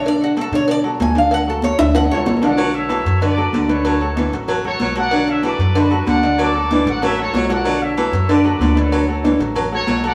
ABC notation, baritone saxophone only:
X:1
M:4/4
L:1/8
Q:1/4=189
K:Bdor
V:1 name="Baritone saxophone" clef=bass
z8 | z8 | F,2 E,2 D,2 D,2 | F,2 E,2 F,2 F,2 |
F,2 E,2 D,2 D,2 | F,2 E,2 F,2 F,2 | F,2 E,2 D,2 D,2 | F,2 E,2 F,2 F,2 |]